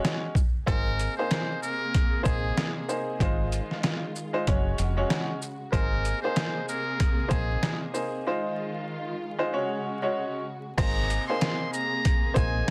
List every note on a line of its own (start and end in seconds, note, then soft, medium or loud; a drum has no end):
0.00 0.33 G#3 medium
0.00 0.33 C#4 medium
0.00 0.33 F#4 medium
0.00 0.33 C#5 loud
0.05 snare loud
0.05 closed hi-hat medium
0.35 kick medium
0.35 shaker medium
0.66 1.07 G#1 loud
0.66 3.17 C3 medium
0.66 1.13 A#3 medium
0.66 3.17 A#3 medium
0.66 1.13 D#4 medium
0.66 1.13 G#4 medium
0.66 3.17 G#4 medium
0.66 1.15 A#4 loud
0.66 1.13 C5 loud
0.66 kick loud
0.66 closed hi-hat medium
0.99 closed hi-hat soft
0.99 shaker soft
1.17 2.19 A#3 loud
1.17 2.19 D#4 medium
1.17 2.19 G#4 medium
1.17 1.59 C5 medium
1.17 2.19 C5 loud
1.31 snare loud
1.31 closed hi-hat medium
1.62 2.22 A#4 medium
1.62 shaker soft
1.94 kick medium
1.94 closed hi-hat loud
2.23 2.50 A#1 medium
2.23 2.83 A#3 medium
2.23 2.83 D#4 medium
2.23 2.83 G#4 medium
2.23 2.73 G#4 medium
2.23 2.84 C5 loud
2.23 kick medium
2.23 closed hi-hat medium
2.23 shaker medium
2.57 snare loud
2.57 closed hi-hat medium
2.88 3.18 A#3 medium
2.88 3.18 D#4 medium
2.88 3.18 G#4 medium
2.88 3.18 C5 medium
2.88 shaker medium
3.19 3.59 G#1 loud
3.19 4.45 D#3 medium
3.19 5.70 G#3 medium
3.19 4.09 G#3 medium
3.19 4.09 D#4 medium
3.19 4.45 F4 medium
3.19 4.10 F4 medium
3.19 4.10 C5 loud
3.19 kick loud
3.19 closed hi-hat medium
3.52 closed hi-hat medium
3.52 shaker soft
3.71 snare soft
3.83 snare loud
3.83 closed hi-hat medium
4.16 shaker soft
4.33 4.46 G#3 medium
4.33 4.46 D#4 medium
4.33 4.47 F4 medium
4.33 4.47 C5 loud
4.46 4.72 F#1 loud
4.46 5.72 C#3 medium
4.46 4.93 G#3 medium
4.46 4.93 C#4 medium
4.46 5.71 F#4 medium
4.46 4.93 F#4 medium
4.46 4.93 C#5 loud
4.46 kick medium
4.46 closed hi-hat loud
4.78 5.03 F1 medium
4.78 closed hi-hat medium
4.78 shaker medium
4.97 5.38 G#3 medium
4.97 5.38 C#4 medium
4.97 5.38 F#4 medium
4.97 5.39 C#5 loud
5.10 snare loud
5.10 closed hi-hat medium
5.42 shaker medium
5.72 6.12 G#1 loud
5.72 8.23 C3 medium
5.72 6.18 A#3 medium
5.72 8.23 A#3 medium
5.72 6.18 D#4 medium
5.72 6.19 G#4 medium
5.72 8.23 G#4 medium
5.72 6.20 A#4 loud
5.72 6.19 C5 loud
5.72 kick loud
5.72 closed hi-hat medium
6.05 closed hi-hat soft
6.05 shaker soft
6.23 7.24 A#3 loud
6.23 7.24 D#4 medium
6.23 7.24 G#4 medium
6.23 6.65 C5 medium
6.23 7.24 C5 loud
6.36 snare loud
6.36 closed hi-hat medium
6.69 7.28 A#4 medium
6.69 shaker soft
7.00 kick medium
7.00 closed hi-hat loud
7.28 7.55 A#1 loud
7.28 7.89 A#3 medium
7.28 7.89 D#4 medium
7.28 7.89 G#4 medium
7.28 7.78 G#4 medium
7.28 7.89 C5 loud
7.28 kick medium
7.28 closed hi-hat medium
7.28 shaker medium
7.63 snare loud
7.63 closed hi-hat medium
7.93 8.23 A#3 medium
7.93 8.23 D#4 medium
7.93 8.23 G#4 medium
7.93 8.24 C5 medium
7.93 shaker medium
8.26 9.51 D#3 medium
8.26 10.76 G#3 medium
8.26 9.15 G#3 medium
8.26 9.15 D#4 medium
8.26 9.51 F4 medium
8.26 9.15 F4 medium
8.26 9.15 C5 loud
9.38 9.51 G#3 medium
9.38 9.52 D#4 medium
9.38 9.52 F4 medium
9.38 9.52 C5 loud
9.52 10.77 C#3 medium
9.52 9.98 G#3 medium
9.52 9.98 C#4 medium
9.52 10.77 F#4 medium
9.52 9.98 F#4 medium
9.52 9.99 C#5 loud
10.02 10.44 G#3 medium
10.02 10.44 C#4 medium
10.02 10.44 F#4 medium
10.02 10.44 C#5 loud
10.77 11.17 G#1 loud
10.77 12.70 C3 medium
10.77 11.24 A#3 medium
10.77 12.70 A#3 medium
10.77 11.24 D#4 medium
10.77 11.24 G#4 medium
10.77 12.70 G#4 medium
10.77 11.24 C5 loud
10.77 11.25 A#5 loud
10.77 kick loud
10.77 closed hi-hat medium
10.77 crash loud
11.10 closed hi-hat medium
11.10 shaker medium
11.28 12.29 A#3 loud
11.28 12.29 D#4 medium
11.28 12.30 G#4 medium
11.28 12.30 C5 loud
11.28 11.70 C6 medium
11.41 snare loud
11.41 closed hi-hat medium
11.73 12.32 A#5 medium
11.73 shaker medium
12.05 kick medium
12.05 closed hi-hat loud
12.34 12.61 A#1 loud
12.34 12.70 A#3 loud
12.34 12.70 D#4 medium
12.34 12.70 G#4 medium
12.34 12.70 C5 loud
12.34 12.70 G#5 medium
12.34 kick medium
12.34 closed hi-hat medium
12.34 shaker medium